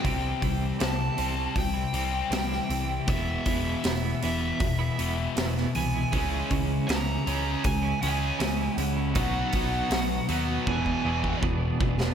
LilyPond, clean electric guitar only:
\new Staff \with { instrumentName = "Clean electric guitar" } { \time 4/4 \key c \major \tempo 4 = 79 <c e g c' e'>8 <e g c' e'>8 <c e g c' e'>8 <e g c' e'>8. <g c' e'>16 <e g c' e'>8 <c e g c' e'>8 <e g c' e'>16 <g c' e'>16 | <e, b, e gis b e'>8 <e gis b e'>8 <e, b, e gis b e'>8 <e gis b e'>8. <e gis b e'>16 <e gis b e'>8 <e, b, e gis b e'>8 <e gis b e'>16 <e gis b e'>16 | <cis e gis cis' e'>8 <e gis cis' e'>8 <cis e gis cis' e'>8 <e gis cis' e'>8. <gis cis' e'>16 <e gis cis' e'>8 <cis e gis cis' e'>8 <e gis cis' e'>16 <gis cis' e'>16 | <b, fis b dis' fis'>8 <fis b dis' fis'>8 <b, fis b dis' fis'>8 <fis b dis' fis'>8 <e, b, e b d' gis'>16 <e b d' gis'>16 <e b d' gis'>8 <e, b, e b d' gis'>8 <e b d' gis'>16 <e b d' gis'>16 | }